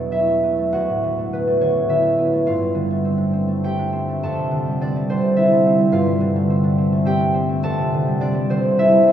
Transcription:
Already playing: E2 B2 F#3 A3 B3 D4 A4 D5
0.11 F#3 E4 E5
0.26 A3
0.43 B3
0.58 A3
0.72 D2 F#4 F#5
0.89 A2
1.03 D3
1.18 A3
1.33 B3 B4
1.47 A3
1.61 D3 C#4 C#5
1.76 A2
1.89 D3 E4 E5
2.04 A3
2.18 B3
2.33 A3
2.46 G2 F4 F5
2.62 G3
2.75 D3
2.90 A3
3.05 C4
3.18 D4
3.33 C4
3.48 A3
3.64 C4 G4 G5
3.79 D4
3.93 C4
4.09 A3
4.23 F2 A4 A5
4.38 C3
4.51 D3
4.68 G3
4.81 C4 D4 D5
4.96 G3
5.09 D3 C4 C5
5.22 C3
5.36 D3 E4 E5
5.52 G3
5.67 C4
5.79 G3
5.92 G2 F4 F5
6.06 G3
6.20 D3
6.36 A3
6.50 C4
6.64 D4
6.78 C4
6.92 A3
7.05 C4 G4 G5
7.20 D4
7.34 C4
7.49 A3
7.63 F2 A4 A5
7.79 C3
7.94 D3
8.07 G3
8.20 C4 D4 D5
8.34 G3
8.50 D3 C4 C5
8.65 C3
8.78 D3 E4 E5
8.92 G3
9.07 C4

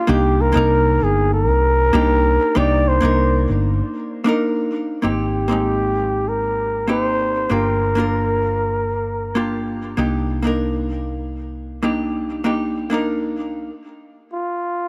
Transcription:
Already playing: F4
0.07 C2 A#3 D4 D#4 G4
0.41 A#4
0.52 C2 A#3 D4 D#4
0.57 A#4
1.01 G1 G#4
1.34 A#4
1.48 C2
1.93 C2 A#3 D4 D#4 G4
2.55 C2 A#3 D4 D#4 G4 D5
2.88 C5
3.01 C2 A#3 D4 D#4
3.05 A#4
3.49 G1
4.24 A#3 D4 D#4
4.29 A#4
5.02 G#1 A#3 C4 D#4 G4
5.48 A#3 C4 D#4
5.52 G#3
6.29 A#4
6.87 A#3 C4 D#4 G4 C5
7.49 G1 A#3 D4 F4 G4 A#4
7.95 A#3 D4 F4
8.00 A#4
9.35 A#3 D4 F4 G4
9.97 C2 A#3 D4 D#4 G4
10.42 A#3 D4 D#4
10.47 A#4
11.82 A#3 D4 D#4 G4
12.44 A#3 D4 D#4 G4
12.90 A#3 D4 D#4
12.94 A#4
14.33 F4

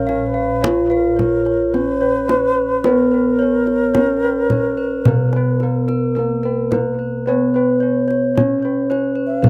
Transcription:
Already playing: A#1 C#4 A#4 F5
0.07 C#5 F5, kendang slap
0.26 B4
0.34 F5
0.61 F4 C#5 F5, kendang low
0.90 B4 F5, kendang slap
0.95 A#4
1.16 C#5, kendang slap, kendang low
1.45 C#5, kendang slap
1.74 B3 C#4 B4 C#5, kendang slap
2.01 B4 C#5
2.28 B4 C#5, kendang high
2.55 B4
2.83 B3 A#4 B4 C#5, kendang high
3.11 B4
3.39 C#5
3.66 C#5, kendang slap
3.94 B3 C#4 C#5, kendang high, kendang low
4.23 B4 C#5
4.50 B4 C#5, kendang slap, kendang low
4.77 B4
5.05 B2 B3 A#4 B4, kendang low
5.33 B4, kendang slap
5.60 A#4, kendang slap
5.88 A#4, kendang slap
6.15 A#3 B3 A#4, kendang slap
6.43 A#4 B4
6.71 A#4 B4, kendang high, kendang low
6.99 B4
7.26 B3 B4 C#5
7.54 B4
7.80 C#5
8.08 C#5, kendang slap
8.36 B3 C#4 C#5, kendang high, kendang low
8.62 B4 C#5
8.90 B4 C#5, kendang slap
9.15 B4
9.27 F5
9.43 B2 B3 A#4 B4, kendang low

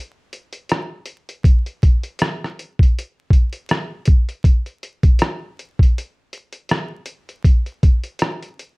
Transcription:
0.33 closed hi-hat
0.53 closed hi-hat
0.69 cross-stick, closed hi-hat
1.06 closed hi-hat
1.29 closed hi-hat
1.44 kick, closed hi-hat
1.66 closed hi-hat
1.83 kick, closed hi-hat
2.03 closed hi-hat
2.19 cross-stick, closed hi-hat
2.44 cross-stick
2.59 closed hi-hat
2.79 kick, closed hi-hat
2.99 closed hi-hat
3.30 kick, closed hi-hat
3.53 closed hi-hat
3.69 cross-stick, closed hi-hat
4.05 kick, closed hi-hat
4.29 closed hi-hat
4.44 kick, closed hi-hat
4.66 closed hi-hat
4.83 closed hi-hat
5.03 kick, closed hi-hat
5.19 cross-stick, closed hi-hat
5.59 closed hi-hat
5.79 kick, closed hi-hat
5.98 closed hi-hat
6.33 closed hi-hat
6.53 closed hi-hat
6.69 cross-stick, closed hi-hat
7.06 closed hi-hat
7.29 closed hi-hat
7.44 kick, closed hi-hat
7.66 closed hi-hat
7.83 kick, closed hi-hat
8.04 closed hi-hat
8.19 cross-stick, closed hi-hat
8.42 closed hi-hat
8.59 closed hi-hat

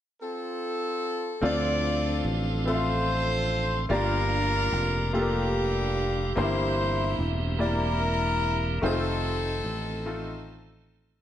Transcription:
0.22 C4 F4 A4
1.41 D2 D3 F3 C4 D4 F4 A4 D5
2.25 A1
2.66 C4 F4 A4 C5 E5
2.74 F5
3.89 G1 G2 F3 A#3 D4 F4 G4 A#4 D5
3.97 G4
4.72 F1
5.13 A#3 D4 F4 G4 A4
5.21 A#4
6.36 G1 G2 D3 A#3 C4 D4 E4 G4 C5
6.43 E3 E4
7.19 E1
7.58 A#3 E4 G4 A#4 D5
7.63 E4
8.82 F1 D#3 A3 C4 D#4 F4 A4 C5
9.65 A1
10.06 A3 D#4 F4 A4

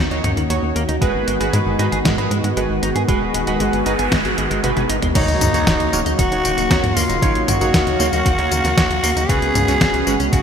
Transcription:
Already playing: D#3 A#3 C#4 F#4
0.11 D#2 D#4 F#4 C#5, closed hi-hat
0.24 D#2 D#3, closed hi-hat, mid tom
0.37 D#2 D#3, closed hi-hat
0.50 D#2 D#3 D#4 F#4 C#5, closed hi-hat
0.63 D#2
0.76 D#2 A#3, closed hi-hat
0.89 D#2 D#4, closed hi-hat
1.01 G#1 G#3 B3 F#4 G#4 B4, kick, closed hi-hat
1.14 G#1
1.27 G#1 G#3, closed hi-hat
1.40 G#1 G#3 F#4 G#4 B4, closed hi-hat
1.53 G#2 G#3, closed hi-hat, mid tom
1.66 G#1
1.79 G#2 D#4 F#4 G#4 B4, closed hi-hat
1.92 G#1 G#4, closed hi-hat
2.05 G#2 G#3, kick, snare, closed hi-hat
2.18 G#2 F#4 G#4 B4, closed hi-hat
2.31 G#2 G#3, closed hi-hat
2.44 G#2 G#3, closed hi-hat
2.57 G#1 G#3 F#4 G#4 B4, closed hi-hat
2.70 G#1
2.82 G#1 D#4, closed hi-hat
2.95 G#2 G#4, closed hi-hat
3.08 D#1 G#3 F#4 G#4 B4, kick, closed hi-hat, noise sweep
3.21 D#1
3.34 D#1 G#3, closed hi-hat
3.47 D#1 G#3 F#4 G#4 B4, closed hi-hat
3.60 G#1 G#3, closed hi-hat
3.73 G#1, closed hi-hat
3.86 G#1 D#4 F#4 G#4 B4, closed hi-hat
3.99 G#1 G#4, closed hi-hat
4.12 G#1 G#3, kick, snare, closed hi-hat
4.25 G#1 F#4 G#4 B4, closed hi-hat
4.38 G#1 G#3, closed hi-hat
4.51 G#1 G#3, closed hi-hat
4.63 G#1 G#3 F#4 G#4 B4, closed hi-hat, high tom
4.77 G#1 F#4 G#4 B4, closed hi-hat, high tom
4.89 G#1 D#4, closed hi-hat
5.02 G#1 G#3, closed hi-hat, mid tom
5.15 D#2 C#3 D#3 F#3 A#3 D#4 F#4 C#5, kick, closed hi-hat, crash, tambourine, impact
5.28 D#2, closed hi-hat
5.41 D#2 D#3, closed hi-hat, mid tom, tambourine
5.54 D#2 D#3 D#4 F#4 C#5, closed hi-hat, tambourine
5.67 D#1 D#3, kick, snare, closed hi-hat, tambourine
5.80 D#2, closed hi-hat
5.93 D#1 A#3 D#4 F#4 C#5, tambourine
6.06 D#2 D#4, closed hi-hat, tambourine
6.19 D#1 D#3 F#4, kick, closed hi-hat, tambourine
6.32 D#1 D#4 F#4 C#5, closed hi-hat
6.45 D#1 D#3, closed hi-hat, tambourine
6.58 D#1 D#3, closed hi-hat, tambourine
6.70 D#2 D#3 D#4 F#4 C#5, kick, snare, closed hi-hat, tambourine
6.83 D#2, closed hi-hat, mid tom
6.96 D#2 A#3 F4, open hi-hat, tambourine
7.09 D#1 D#4, closed hi-hat, tambourine
7.22 A#1 D#3 D#4 F#4 C#5 F5, kick, closed hi-hat, tambourine
7.35 A#1, closed hi-hat
7.48 A#1 D#3 F#4, closed hi-hat, mid tom, tambourine
7.61 A#1 D#3 D#4 F#4 C#5, closed hi-hat, tambourine
7.74 D#2 D#3, kick, snare, closed hi-hat, tambourine
7.87 D#2, closed hi-hat
8.00 D#2 A#3 D#4 F#4 C#5, tambourine
8.13 D#2 D#4, closed hi-hat, tambourine
8.26 D#2 D#3, kick, closed hi-hat, tambourine
8.39 D#2 D#4 F#4 C#5, closed hi-hat
8.51 D#2 D#3, closed hi-hat, tambourine
8.64 D#2 D#3, snare, closed hi-hat, tambourine
8.77 D#2 D#3 D#4 F#4 C#5, kick, snare, closed hi-hat, tambourine
8.90 D#2, closed hi-hat
9.03 D#2 A#3, open hi-hat, tambourine
9.16 D#2 D#4, closed hi-hat, tambourine
9.29 C#2 C#3 G#3 B3 C#4 F#4 G#4 B4, kick, closed hi-hat, tambourine
9.42 C#2, closed hi-hat
9.55 C#2 C#3, closed hi-hat, mid tom, tambourine
9.68 C#2 C#3 C#4 F#4 B4, closed hi-hat, tambourine
9.81 G#1 C#3, kick, snare, closed hi-hat, tambourine
9.94 C#2, closed hi-hat
10.07 G#1 G#3 C#4 F#4 B4, tambourine
10.20 C#2 C#4, closed hi-hat, tambourine
10.33 G#1 C#3 F#4, kick, closed hi-hat, tambourine

